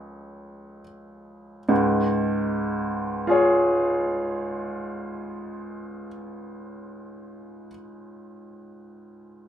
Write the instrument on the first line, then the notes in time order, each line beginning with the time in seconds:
grand piano
Already playing: C#2 F3 G#3 C#4 G#4 C#5
1.69 C#2 G#2
3.27 F4 G#4 C#5